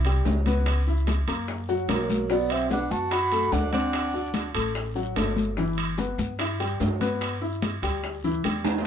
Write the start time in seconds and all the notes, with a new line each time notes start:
Already playing: C2
0.05 G3 G4, high conga, high timbale, maracas
0.25 C#2, high bongo, low bongo, high conga, low timbale, short guiro, maracas
0.46 B3 B4, high conga, high timbale, short guiro, maracas
0.66 high bongo, high conga, high timbale, long guiro, maracas
0.87 E4 E5, high bongo, high conga, maracas
1.07 high bongo, high conga, high timbale, short guiro, maracas
1.27 F#2 A#3 A#4, high bongo, high conga, high timbale, short guiro, maracas
1.48 high bongo, high conga, long guiro, maracas
1.69 F#3 F#4, high conga, maracas
1.88 B1 F#3 A#3 A#4, high bongo, low bongo, high conga, high timbale, low timbale, short guiro, maracas
2.10 high conga, short guiro, maracas
2.30 F#3 B3 F#4 D5, high bongo, long guiro, maracas
2.50 C4 E5, high bongo, high conga, high timbale
2.70 B3 D4 B4 F#5, high bongo, high conga, short guiro, maracas
2.91 F#2 F#4 A5, high bongo, high conga, short guiro, maracas
3.11 F#4 F#5 B5, high bongo, high conga, high timbale, long guiro, maracas
3.32 A3 A4, high conga, high timbale, maracas
3.52 D2 D4 F#5, high bongo, low bongo, high conga, low timbale, short guiro, maracas
3.73 C4 D4 C5 F#5, high conga, high timbale, short guiro, maracas
3.93 high bongo, high conga, high timbale, long guiro, maracas
4.13 F#4 F#5, high bongo, high conga, maracas
4.34 high bongo, high conga, high timbale, short guiro, maracas
4.54 A1 A3 A4, high bongo, high conga, high timbale, short guiro, maracas
4.75 high bongo, high conga, long guiro, maracas
4.95 F#3 F#4, high conga, maracas
5.16 G1 A3 A4, high bongo, low bongo, high conga, high timbale, low timbale, short guiro, maracas
5.36 high conga, short guiro, maracas
5.57 E3 E4, high bongo, high conga, long guiro, maracas
5.78 high bongo, high conga, high timbale, maracas
5.98 B3 B4, high bongo, high conga, short guiro, maracas
6.18 G2, high bongo, high conga, short guiro, maracas
6.39 E4 E5, high bongo, high conga, high timbale, long guiro, maracas
6.60 G3 G4, high conga, high timbale, maracas
6.80 G2, high bongo, low bongo, high conga, low timbale, short guiro, maracas
7.01 B3 B4, high conga, high timbale, short guiro, maracas
7.21 high bongo, high conga, high timbale, long guiro, maracas
7.42 E4 E5, high bongo, high conga
7.62 high bongo, high conga, high timbale, short guiro, maracas
7.82 D2 G3 G4, high bongo, high conga, high timbale, short guiro, maracas
8.03 high bongo, high conga, long guiro, maracas
8.24 E3 E4, high conga, maracas
8.44 E2 G3 G4, high bongo, low bongo, high conga, high timbale, short guiro, maracas
8.64 high bongo, high conga, high timbale, short guiro, maracas
8.78 low timbale